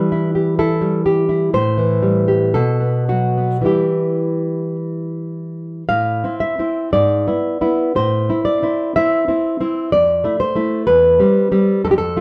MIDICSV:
0, 0, Header, 1, 2, 480
1, 0, Start_track
1, 0, Key_signature, 1, "minor"
1, 0, Tempo, 950872
1, 774, Time_signature, 2, 2, 24, 8
1, 774, Tempo, 1013514
1, 1254, Tempo, 1115242
1, 2693, Key_signature, 0, "minor"
1, 2694, Tempo, 1029160
1, 3654, Tempo, 1013514
1, 4134, Tempo, 963082
1, 5750, End_track
2, 0, Start_track
2, 0, Title_t, "Nylon-string guitar"
2, 0, Program_c, 0, 24
2, 0, Note_on_c, 0, 52, 55
2, 0, Note_on_c, 0, 55, 44
2, 0, Note_on_c, 0, 71, 60
2, 60, Note_on_c, 0, 64, 50
2, 175, Note_off_c, 0, 64, 0
2, 177, Note_on_c, 0, 67, 40
2, 273, Note_off_c, 0, 71, 0
2, 295, Note_off_c, 0, 67, 0
2, 297, Note_on_c, 0, 64, 51
2, 298, Note_on_c, 0, 69, 75
2, 404, Note_off_c, 0, 55, 0
2, 410, Note_on_c, 0, 55, 51
2, 525, Note_off_c, 0, 69, 0
2, 534, Note_on_c, 0, 67, 54
2, 645, Note_off_c, 0, 64, 0
2, 651, Note_on_c, 0, 64, 45
2, 754, Note_off_c, 0, 52, 0
2, 774, Note_off_c, 0, 55, 0
2, 774, Note_off_c, 0, 64, 0
2, 775, Note_off_c, 0, 67, 0
2, 775, Note_on_c, 0, 45, 56
2, 777, Note_on_c, 0, 72, 81
2, 890, Note_on_c, 0, 52, 45
2, 1007, Note_on_c, 0, 55, 43
2, 1128, Note_on_c, 0, 67, 42
2, 1236, Note_off_c, 0, 72, 0
2, 1240, Note_off_c, 0, 45, 0
2, 1251, Note_on_c, 0, 69, 72
2, 1253, Note_off_c, 0, 55, 0
2, 1253, Note_off_c, 0, 67, 0
2, 1254, Note_off_c, 0, 52, 0
2, 1254, Note_on_c, 0, 47, 58
2, 1365, Note_on_c, 0, 59, 38
2, 1477, Note_off_c, 0, 69, 0
2, 1486, Note_on_c, 0, 54, 41
2, 1488, Note_on_c, 0, 66, 64
2, 1606, Note_off_c, 0, 59, 0
2, 1611, Note_on_c, 0, 59, 34
2, 1711, Note_off_c, 0, 54, 0
2, 1713, Note_on_c, 0, 52, 40
2, 1718, Note_off_c, 0, 47, 0
2, 1720, Note_on_c, 0, 55, 26
2, 1723, Note_off_c, 0, 66, 0
2, 1726, Note_off_c, 0, 59, 0
2, 1728, Note_on_c, 0, 64, 28
2, 1732, Note_on_c, 0, 67, 54
2, 2206, Note_off_c, 0, 67, 0
2, 2666, Note_off_c, 0, 52, 0
2, 2670, Note_off_c, 0, 55, 0
2, 2674, Note_off_c, 0, 64, 0
2, 2691, Note_on_c, 0, 77, 85
2, 2693, Note_on_c, 0, 45, 47
2, 2847, Note_off_c, 0, 45, 0
2, 2856, Note_on_c, 0, 60, 42
2, 2858, Note_on_c, 0, 64, 44
2, 2921, Note_off_c, 0, 77, 0
2, 2932, Note_on_c, 0, 76, 67
2, 3015, Note_off_c, 0, 60, 0
2, 3015, Note_off_c, 0, 64, 0
2, 3020, Note_on_c, 0, 60, 43
2, 3021, Note_on_c, 0, 64, 47
2, 3162, Note_off_c, 0, 60, 0
2, 3162, Note_off_c, 0, 64, 0
2, 3164, Note_off_c, 0, 76, 0
2, 3177, Note_on_c, 0, 44, 57
2, 3177, Note_on_c, 0, 74, 82
2, 3333, Note_off_c, 0, 44, 0
2, 3337, Note_on_c, 0, 59, 36
2, 3340, Note_on_c, 0, 64, 43
2, 3491, Note_off_c, 0, 59, 0
2, 3491, Note_off_c, 0, 64, 0
2, 3496, Note_on_c, 0, 59, 41
2, 3498, Note_on_c, 0, 64, 48
2, 3636, Note_off_c, 0, 74, 0
2, 3638, Note_off_c, 0, 59, 0
2, 3638, Note_off_c, 0, 64, 0
2, 3655, Note_on_c, 0, 45, 55
2, 3658, Note_on_c, 0, 72, 75
2, 3809, Note_off_c, 0, 45, 0
2, 3816, Note_on_c, 0, 60, 43
2, 3819, Note_on_c, 0, 64, 47
2, 3886, Note_off_c, 0, 72, 0
2, 3890, Note_on_c, 0, 74, 70
2, 3968, Note_off_c, 0, 60, 0
2, 3972, Note_off_c, 0, 64, 0
2, 3974, Note_on_c, 0, 60, 47
2, 3977, Note_on_c, 0, 64, 50
2, 4122, Note_off_c, 0, 74, 0
2, 4129, Note_off_c, 0, 60, 0
2, 4131, Note_off_c, 0, 64, 0
2, 4132, Note_on_c, 0, 76, 85
2, 4135, Note_on_c, 0, 60, 48
2, 4138, Note_on_c, 0, 64, 52
2, 4286, Note_off_c, 0, 60, 0
2, 4286, Note_off_c, 0, 64, 0
2, 4292, Note_on_c, 0, 60, 41
2, 4294, Note_on_c, 0, 64, 46
2, 4448, Note_off_c, 0, 60, 0
2, 4449, Note_off_c, 0, 64, 0
2, 4453, Note_on_c, 0, 60, 51
2, 4456, Note_on_c, 0, 64, 48
2, 4595, Note_off_c, 0, 76, 0
2, 4598, Note_off_c, 0, 60, 0
2, 4599, Note_off_c, 0, 64, 0
2, 4612, Note_on_c, 0, 74, 86
2, 4614, Note_on_c, 0, 41, 54
2, 4768, Note_off_c, 0, 41, 0
2, 4770, Note_on_c, 0, 57, 50
2, 4774, Note_on_c, 0, 64, 50
2, 4842, Note_off_c, 0, 74, 0
2, 4847, Note_off_c, 0, 64, 0
2, 4849, Note_on_c, 0, 72, 69
2, 4921, Note_off_c, 0, 57, 0
2, 4927, Note_on_c, 0, 57, 47
2, 4930, Note_on_c, 0, 64, 53
2, 5074, Note_off_c, 0, 57, 0
2, 5075, Note_off_c, 0, 64, 0
2, 5081, Note_off_c, 0, 72, 0
2, 5083, Note_on_c, 0, 71, 86
2, 5086, Note_on_c, 0, 40, 71
2, 5245, Note_off_c, 0, 40, 0
2, 5246, Note_on_c, 0, 55, 49
2, 5249, Note_on_c, 0, 60, 54
2, 5400, Note_off_c, 0, 55, 0
2, 5403, Note_off_c, 0, 60, 0
2, 5406, Note_on_c, 0, 55, 55
2, 5409, Note_on_c, 0, 60, 53
2, 5549, Note_off_c, 0, 71, 0
2, 5554, Note_off_c, 0, 55, 0
2, 5555, Note_off_c, 0, 60, 0
2, 5569, Note_on_c, 0, 41, 65
2, 5570, Note_on_c, 0, 69, 77
2, 5600, Note_off_c, 0, 69, 0
2, 5602, Note_on_c, 0, 67, 71
2, 5635, Note_off_c, 0, 67, 0
2, 5637, Note_on_c, 0, 69, 87
2, 5727, Note_off_c, 0, 41, 0
2, 5730, Note_on_c, 0, 57, 53
2, 5733, Note_on_c, 0, 65, 52
2, 5750, Note_off_c, 0, 57, 0
2, 5750, Note_off_c, 0, 65, 0
2, 5750, Note_off_c, 0, 69, 0
2, 5750, End_track
0, 0, End_of_file